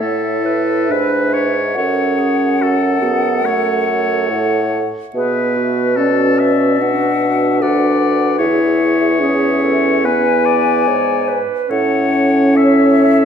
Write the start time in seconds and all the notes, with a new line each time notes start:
Already playing: A2
0.00 E4 A4 C#5 E5
0.45 B4
0.89 G#2 D4 B4 E5
1.34 C#5
1.75 F#2 C#4 A4 C#5 F#5
2.18 G#4
2.60 F#4 A4
3.02 B3 G#4
3.43 A3 A4 C#5
3.86 A4
4.30 A2 F#5
5.15 B2 B3 G#4 B4 E5
5.56 F#4
5.96 C#4 F#4 A4 D5
6.39 E5
6.81 D4 F#5
7.62 D2 B4 D5 F#5
8.39 E2 E4 G#4 C#5 E5
9.21 C#4 G#4 E5
9.63 A4
10.05 B3 B4 G#5
10.45 D5
10.87 G#2 C#5
11.28 B4
11.70 A2 C#4 A4 C#5 F#5
12.56 C#5 E5
13.05 E5